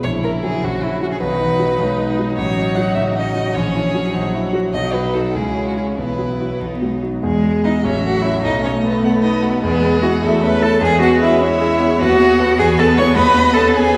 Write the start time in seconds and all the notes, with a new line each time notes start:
0.03 A#1 C#3 E4 C#5
0.24 E4 A#4
0.43 F#3 G#4
0.63 A#1 C#4 F#4
0.83 E4
1.02 F#3 F#4
1.12 G#4
1.20 B1 D#3 D#4 F#4 B4
1.41 E3 D#4
1.60 F#3
1.79 B1 G#3 D#4
1.99 D#4
2.19 F#3
2.37 A1 F#3 F#4 C#5
2.58 C#4
2.75 F#3 F#5
2.94 A1 C#3 E5
3.16 C#4 D#5
3.36 F#3
3.54 A#1 E3 C#4 G#4 C#5
3.73 E3 E4
3.93 F#3
4.13 A#1 D#4 F#4
4.34 E4
4.53 F#3 F#4
4.72 B1 F#3 D#4 F#4 D#5
4.93 F#3 B4
5.13 D#4 F#4 A4
5.34 C#2 G#3 C#4 E4 G#4
5.55 C#4
5.67 F#4
5.76 E4 G#4
5.97 B1 E3 B3 E4 B4
6.19 F#3
6.40 E4 F#4
6.60 B1 B3 D#4
6.82 F#3 G#3
7.02 F#3 D#4 F#4
7.23 E2 G#3 G#4
7.44 G#3
7.64 B3 D#4 E4 D#5
7.83 A1 F#3 C#4 C#5 E5
8.03 A3 F#4 F#5
8.22 C#4 E4 F#4
8.27 E5
8.42 B1 A3 D#4 D#5
8.62 A3 C#4 C#5
8.83 B3 B4
9.02 A3 B3 B4 F#5
9.23 D#4 D#5
9.42 A3 F#4
9.62 E2 G#3 B3 G#4 B4
9.83 G#3
10.02 E4 F#4 G#4 F#5
10.22 E2 A3 E4 A4 E5
10.42 C#4 B4 B5
10.62 E4 A4 A5
10.81 E2 G#3 G#4 B4 G#5
11.01 B3 F#4 F#5
11.22 C#4 E4 E5
11.41 B3 E4 C#5 E5
11.61 G#4
11.80 B3
12.00 D#2 B3 F#4 B4 F#5
12.19 B3 G#4
12.38 F#4 A4 B4
12.58 E2 G#4 B4 G#5
12.78 B3 A4 A5
12.98 E4 B4 C#5 C#6
13.15 D#2 B4 D#5 B5
13.36 B3
13.53 C#4 A4 A5
13.74 B3 G#4 B4 G#5
13.94 F#4